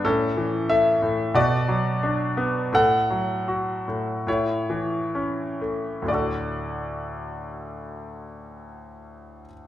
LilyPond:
<<
  \new Staff \with { instrumentName = "Grand piano" } { \time 4/4 \key d \major \tempo 4 = 75 << { a'4 e''4 d''2 | fis''2 cis''4. r8 | d''1 | } \\ { cis'2 fis'2 | a'2 e'2 | r1 | } >> }
  \new Staff \with { instrumentName = "Grand piano" } { \clef bass \time 4/4 \key d \major a,8 e8 a8 a,8 b,8 fis8 d'8 b8 | a,8 fis8 fis'8 a,8 a,8 e8 cis'8 a8 | <d, a, d a fis' a'>1 | }
>>